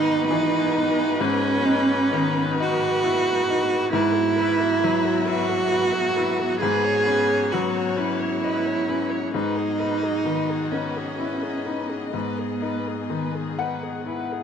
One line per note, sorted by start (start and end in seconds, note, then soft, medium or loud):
0.00 1.16 G#2 medium
0.00 0.13 D#3 medium
0.00 3.89 B3 medium
0.00 0.76 D#4 medium
0.00 1.22 D#4 loud
0.00 3.89 F#4 medium
0.00 3.90 B4 medium
0.00 3.93 D#5 medium
0.30 0.75 E3 medium
0.76 1.20 D#4 medium
1.20 3.89 G#2 medium
1.20 2.58 C#4 loud
1.66 2.40 D#4 medium
2.13 2.86 D#3 medium
2.60 3.31 D#4 medium
2.60 3.91 F#4 loud
3.04 3.48 E4 medium
3.50 3.94 D#4 medium
3.92 6.57 G#2 medium
3.92 9.29 B3 medium
3.92 5.29 E4 loud
3.92 9.29 F#4 medium
3.92 4.15 B4 medium
3.92 6.61 E5 medium
4.14 4.38 F#4 medium
4.36 5.10 E4 medium
4.36 4.61 B4 medium
4.59 4.82 F#4 medium
4.83 5.55 F#3 medium
4.83 5.06 B4 medium
5.04 5.27 F#4 medium
5.26 5.99 E4 medium
5.26 6.60 F#4 loud
5.26 5.51 B4 medium
5.49 5.70 F#4 medium
5.71 6.16 F#4 medium
5.71 5.95 B4 medium
5.93 6.17 F#4 medium
6.15 6.62 E4 medium
6.15 6.41 B4 medium
6.39 6.60 F#4 medium
6.61 9.30 G#2 medium
6.61 7.53 G#4 loud
6.61 6.86 B4 medium
6.61 9.34 C#5 medium
6.84 7.07 C#5 medium
7.06 7.79 C#4 medium
7.06 7.30 B4 medium
7.28 7.50 C#5 medium
7.51 8.25 F#3 medium
7.51 8.00 F#4 medium
7.51 7.77 B4 medium
7.76 7.98 C#5 medium
7.97 8.70 C#4 medium
7.97 9.34 E4 loud
7.97 8.22 B4 medium
8.20 8.43 C#5 soft
8.44 8.67 B4 medium
8.44 8.89 D#5 soft
8.65 8.90 C#5 soft
8.89 9.34 C#4 soft
8.89 9.12 B4 medium
9.10 9.33 C#5 medium
9.33 12.10 G#2 medium
9.33 14.43 B3 medium
9.33 10.72 D#4 loud
9.33 12.09 F#4 medium
9.33 9.57 B4 medium
9.33 14.43 D#5 medium
9.56 9.81 G#4 medium
9.79 10.54 D#4 soft
9.79 10.05 B4 medium
10.03 10.25 G#4 soft
10.25 11.00 D#3 soft
10.25 10.51 B4 soft
10.49 10.74 G#4 soft
10.71 12.13 C#4 medium
10.71 11.47 D#4 soft
10.71 10.98 B4 soft
10.97 11.18 G#4 soft
11.18 11.66 E4 soft
11.18 11.44 B4 soft
11.43 11.67 G#4 soft
11.65 12.14 D#4 soft
11.65 11.91 B4 soft
11.89 12.13 G#4 soft
12.14 14.43 G#2 soft
12.14 14.43 B3 medium
12.14 14.43 G#4 soft
12.14 12.40 B4 soft
12.38 12.64 G#4 soft
12.62 13.39 D#4 soft
12.62 12.89 B4 soft
12.87 13.11 G#4 soft
13.10 13.87 D#3 soft
13.10 13.36 B4 soft
13.35 13.61 G#4 soft
13.59 14.35 D#4 soft
13.59 13.84 B4 soft
13.59 14.43 F#5 medium
13.83 14.05 G#4 soft
14.06 14.43 E4 soft
14.06 14.34 B4 soft
14.32 14.43 G#4 soft